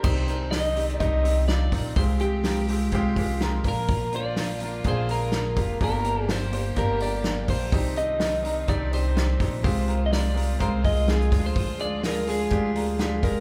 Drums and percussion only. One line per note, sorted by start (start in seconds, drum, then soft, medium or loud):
0.04 kick loud
0.04 crash loud
0.28 hi-hat pedal medium
0.28 open hi-hat medium
0.52 snare loud
0.52 hi-hat pedal medium
0.52 open hi-hat loud
0.65 open hi-hat medium
0.76 hi-hat pedal medium
0.76 open hi-hat medium
0.88 hi-hat pedal medium
1.00 kick medium
1.00 hi-hat pedal medium
1.00 open hi-hat loud
1.25 hi-hat pedal medium
1.25 open hi-hat medium
1.48 snare loud
1.48 hi-hat pedal medium
1.48 open hi-hat medium
1.72 kick medium
1.72 snare soft
1.72 hi-hat pedal medium
1.72 open hi-hat medium
1.96 kick loud
1.96 hi-hat pedal medium
1.96 open hi-hat medium
2.20 hi-hat pedal medium
2.20 open hi-hat medium
2.44 snare loud
2.44 hi-hat pedal medium
2.44 open hi-hat medium
2.68 hi-hat pedal medium
2.68 open hi-hat medium
2.92 kick medium
2.92 hi-hat pedal medium
2.92 open hi-hat medium
3.16 kick loud
3.16 hi-hat pedal medium
3.16 open hi-hat medium
3.40 snare loud
3.40 hi-hat pedal medium
3.40 open hi-hat medium
3.64 kick medium
3.64 hi-hat pedal medium
3.64 open hi-hat medium
3.88 kick loud
3.88 hi-hat pedal medium
3.88 open hi-hat medium
4.13 hi-hat pedal medium
4.13 open hi-hat medium
4.36 snare loud
4.36 hi-hat pedal medium
4.36 open hi-hat medium
4.60 hi-hat pedal medium
4.60 open hi-hat medium
4.84 kick medium
4.84 hi-hat pedal medium
4.84 open hi-hat loud
5.08 hi-hat pedal medium
5.08 open hi-hat medium
5.32 snare loud
5.32 hi-hat pedal medium
5.32 open hi-hat medium
5.56 kick medium
5.56 hi-hat pedal medium
5.56 open hi-hat medium
5.81 kick loud
5.81 hi-hat pedal medium
5.81 open hi-hat medium
6.04 hi-hat pedal medium
6.04 open hi-hat medium
6.29 snare loud
6.29 hi-hat pedal medium
6.29 open hi-hat loud
6.53 hi-hat pedal medium
6.53 open hi-hat medium
6.76 kick medium
6.76 hi-hat pedal medium
6.76 open hi-hat medium
7.00 hi-hat pedal medium
7.00 open hi-hat medium
7.24 snare loud
7.24 hi-hat pedal medium
7.24 open hi-hat medium
7.48 kick medium
7.48 hi-hat pedal medium
7.48 open hi-hat medium
7.72 kick loud
7.72 hi-hat pedal medium
7.72 open hi-hat medium
7.96 hi-hat pedal medium
7.96 open hi-hat medium
8.20 snare loud
8.20 hi-hat pedal medium
8.20 open hi-hat medium
8.44 hi-hat pedal medium
8.44 open hi-hat medium
8.68 kick medium
8.68 hi-hat pedal medium
8.68 open hi-hat medium
8.92 hi-hat pedal medium
8.92 open hi-hat medium
9.17 snare loud
9.17 hi-hat pedal medium
9.17 open hi-hat medium
9.40 kick loud
9.40 snare soft
9.40 hi-hat pedal medium
9.40 open hi-hat medium
9.64 kick loud
9.64 hi-hat pedal medium
9.64 open hi-hat medium
9.88 hi-hat pedal medium
9.88 open hi-hat medium
10.13 snare loud
10.13 hi-hat pedal medium
10.13 open hi-hat loud
10.37 hi-hat pedal medium
10.37 open hi-hat medium
10.60 kick medium
10.60 hi-hat pedal medium
10.60 open hi-hat loud
10.84 kick loud
10.84 hi-hat pedal medium
10.84 open hi-hat medium
10.96 open hi-hat medium
11.08 snare loud
11.08 hi-hat pedal medium
11.08 open hi-hat medium
11.21 hi-hat pedal medium
11.32 kick medium
11.32 snare soft
11.32 hi-hat pedal medium
11.32 open hi-hat medium
11.56 kick loud
11.56 hi-hat pedal medium
11.56 open hi-hat medium
11.79 hi-hat pedal medium
11.79 open hi-hat medium
12.03 snare loud
12.03 hi-hat pedal medium
12.03 open hi-hat loud
12.27 hi-hat pedal medium
12.27 open hi-hat medium
12.50 kick medium
12.50 hi-hat pedal medium
12.50 open hi-hat medium
12.75 hi-hat pedal medium
12.75 open hi-hat medium
12.99 snare loud
12.99 hi-hat pedal medium
12.99 open hi-hat medium
13.23 kick medium
13.23 snare soft
13.23 hi-hat pedal medium
13.23 open hi-hat medium